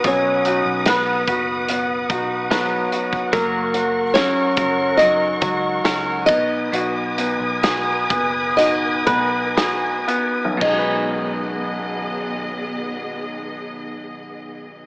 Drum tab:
CC |----------------|----------------|----------------|x---------------|
HH |x-x-x-x-x-x-x-x-|x-x-x-x-x-x-x-x-|x-x-x-x-x-x-x-x-|----------------|
SD |----o-------o---|----o-------o---|----o-------o---|----------------|
BD |o-----o---o----o|o-----o---o---o-|------o---o-----|o---------------|